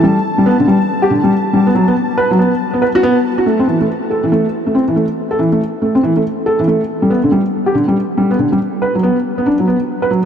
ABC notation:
X:1
M:4/4
L:1/16
Q:"Swing 16ths" 1/4=140
K:Ador
V:1 name="Synth texture"
a16- | a16 | z16 | z16 |
z16 | z16 |]
V:2 name="Felt piano"
G, z2 G, B, D, G, z2 G D, G, z2 G, B, | F, B, z2 B F, B, z2 B, B F B, z2 F | A, C E, A, z2 A E, A, z2 A, C E, A, z | z A E, A, z2 A, C E, A, z2 A E, A, z |
z G, B, D, G, z2 G D, G, z2 G, B, D, G, | z2 B F, B, z2 B, D F, B, z2 B F, z |]